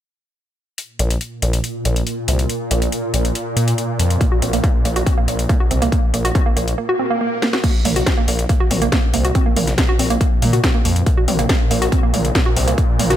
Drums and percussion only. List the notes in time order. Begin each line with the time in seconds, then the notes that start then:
0.78 closed hi-hat
0.99 closed hi-hat
1.10 closed hi-hat
1.21 closed hi-hat
1.42 closed hi-hat
1.53 closed hi-hat
1.64 closed hi-hat
1.85 closed hi-hat
1.96 closed hi-hat
2.07 closed hi-hat
2.28 closed hi-hat
2.39 closed hi-hat
2.49 closed hi-hat
2.71 closed hi-hat
2.82 closed hi-hat
2.92 closed hi-hat
3.14 closed hi-hat
3.25 closed hi-hat
3.35 closed hi-hat
3.57 closed hi-hat
3.68 closed hi-hat
3.78 closed hi-hat
3.99 closed hi-hat
4.10 closed hi-hat
4.21 kick, closed hi-hat
4.42 closed hi-hat
4.53 closed hi-hat
4.64 kick, closed hi-hat
4.85 closed hi-hat
4.96 closed hi-hat
5.06 kick, closed hi-hat
5.28 closed hi-hat
5.39 closed hi-hat
5.49 kick, closed hi-hat
5.71 closed hi-hat
5.82 closed hi-hat
5.92 kick, closed hi-hat
6.14 closed hi-hat
6.25 closed hi-hat
6.35 kick, closed hi-hat
6.57 closed hi-hat
6.68 closed hi-hat
7.42 snare
7.53 snare
7.64 kick, closed hi-hat, crash
7.85 mid tom, open hi-hat
7.96 closed hi-hat
8.06 kick, snare, closed hi-hat
8.28 open hi-hat
8.39 closed hi-hat
8.49 kick, closed hi-hat
8.71 mid tom, open hi-hat
8.82 closed hi-hat
8.92 kick, snare, closed hi-hat
9.14 open hi-hat
9.25 closed hi-hat
9.35 kick, closed hi-hat
9.56 mid tom, open hi-hat
9.67 snare, closed hi-hat
9.78 kick, snare, closed hi-hat
9.99 open hi-hat
10.10 closed hi-hat
10.21 kick, closed hi-hat
10.42 mid tom, open hi-hat
10.53 closed hi-hat
10.64 kick, snare, closed hi-hat
10.85 open hi-hat
10.96 closed hi-hat
11.06 kick, closed hi-hat
11.28 mid tom, open hi-hat
11.39 closed hi-hat
11.49 kick, snare, closed hi-hat
11.71 open hi-hat
11.82 closed hi-hat
11.92 kick, closed hi-hat
12.14 mid tom, open hi-hat
12.25 closed hi-hat
12.35 kick, snare, closed hi-hat
12.56 open hi-hat
12.68 closed hi-hat
12.78 kick, closed hi-hat
12.99 mid tom, open hi-hat
13.10 snare, closed hi-hat